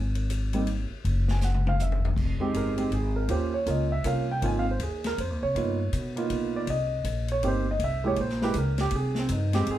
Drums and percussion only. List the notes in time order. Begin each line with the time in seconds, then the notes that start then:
0.15 ride
0.30 hi-hat pedal, ride
0.53 ride
0.67 ride
1.05 kick, ride
1.28 snare
1.41 snare, hi-hat pedal
1.54 mid tom
1.67 mid tom
1.79 floor tom, hi-hat pedal
1.92 floor tom
2.05 floor tom
2.16 kick, crash
2.54 kick, hi-hat pedal, ride
2.78 ride
2.91 kick, ride
3.29 kick, ride
3.66 kick, hi-hat pedal, ride
4.04 kick, hi-hat pedal, ride
4.42 kick, ride
4.80 kick, hi-hat pedal, ride
5.04 snare, ride
5.18 kick, ride
5.55 kick, ride
5.93 kick, hi-hat pedal, ride
6.17 ride
6.30 kick, ride
6.67 kick, ride
7.04 kick, hi-hat pedal, ride
7.28 ride
7.43 kick, ride
7.80 kick, ride
8.16 kick, ride
8.29 snare
8.42 snare
8.54 kick, hi-hat pedal, ride
8.78 snare, ride
8.91 kick, ride
9.15 snare
9.29 kick, hi-hat pedal, ride
9.53 snare, ride
9.67 kick, ride